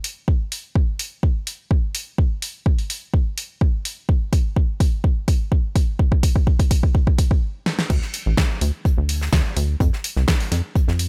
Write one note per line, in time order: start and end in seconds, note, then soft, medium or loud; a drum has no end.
0.04 open hi-hat loud
0.28 kick loud
0.52 open hi-hat loud
0.75 kick loud
0.99 open hi-hat loud
1.23 kick loud
1.47 open hi-hat loud
1.71 kick loud
1.95 open hi-hat loud
2.18 kick loud
2.42 open hi-hat loud
2.66 kick loud
2.79 open hi-hat medium
2.90 open hi-hat loud
3.14 kick loud
3.38 open hi-hat loud
3.61 kick loud
3.85 open hi-hat loud
4.09 kick loud
4.33 kick loud
4.33 open hi-hat loud
4.56 kick loud
4.80 kick loud
4.80 open hi-hat loud
5.04 kick loud
5.28 kick loud
5.28 open hi-hat loud
5.52 kick loud
5.76 kick loud
5.76 open hi-hat loud
5.99 kick loud
6.12 kick loud
6.23 kick loud
6.23 open hi-hat loud
6.36 kick medium
6.47 kick loud
6.59 kick loud
6.59 open hi-hat medium
6.71 kick loud
6.71 open hi-hat loud
6.83 kick medium
6.95 kick loud
7.07 kick loud
7.18 kick loud
7.18 open hi-hat loud
7.31 kick loud
7.66 snare medium
7.79 snare medium
7.90 8.00 D2 loud
7.90 kick loud
7.90 closed hi-hat medium
7.90 crash loud
8.02 snare soft
8.14 closed hi-hat medium
8.14 open hi-hat loud
8.26 8.35 A1 medium
8.37 kick loud
8.37 snare loud
8.37 closed hi-hat medium
8.61 8.71 D2 loud
8.61 closed hi-hat medium
8.61 open hi-hat loud
8.85 kick loud
8.85 closed hi-hat medium
8.98 9.29 D2 medium
9.09 open hi-hat loud
9.09 open hi-hat medium
9.21 snare medium
9.33 9.43 D2 medium
9.33 kick loud
9.33 snare loud
9.33 closed hi-hat loud
9.56 9.76 D2 loud
9.56 closed hi-hat medium
9.56 open hi-hat loud
9.80 9.90 F2 loud
9.80 kick loud
9.80 closed hi-hat medium
9.93 snare soft
10.04 closed hi-hat medium
10.04 open hi-hat loud
10.16 10.26 C2 medium
10.16 snare soft
10.28 kick loud
10.28 snare loud
10.28 closed hi-hat loud
10.40 closed hi-hat soft
10.40 open hi-hat medium
10.52 10.62 F2 loud
10.52 snare soft
10.52 closed hi-hat medium
10.52 open hi-hat loud
10.76 kick loud
10.76 closed hi-hat medium
10.88 11.09 F2 medium
10.88 snare soft
10.99 closed hi-hat medium
10.99 open hi-hat loud